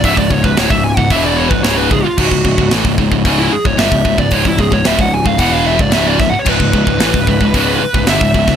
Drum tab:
CC |----------------|x---------------|----------------|x---------------|
HH |o---o---o---o---|----o---o---o---|o---o---o---o---|----o---o---o---|
SD |----o-------o---|----o-------o---|----o-------o-o-|----o-------o--o|
BD |oooo-o-oo--o--o-|oooo-oooo--o-ooo|oooo-o-oo--o--o-|oooo-oooo--o-ooo|